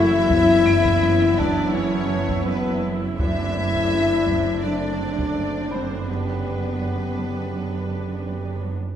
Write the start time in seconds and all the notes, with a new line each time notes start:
Already playing: F#1 F#2 E3 F#3 A3 E4 E5
0.29 F#2 B3, taiko
0.65 F#2 D7
0.85 taiko
1.02 F#2
1.37 F#2 D4 D5 A5, taiko
1.74 F#2 C#4 C#5
2.09 F#2
2.29 taiko
2.46 F#2 B3 B4
2.83 F#3
3.18 F#1 F#2 D3 A3 C4 D4 E4 E5, taiko
3.56 F#2
3.74 taiko
3.92 F#2
4.28 F#2, taiko
4.63 F#2 D3 A3 D4 D5
5.00 F#2
5.18 taiko
5.36 F#2
5.71 F#3 C4 C5 B5
6.07 F#2 D3 B3 G4 B4
6.45 F#2
6.81 F#2
7.17 F#2
7.54 F#2
7.89 F#2
8.25 F#2
8.61 F#3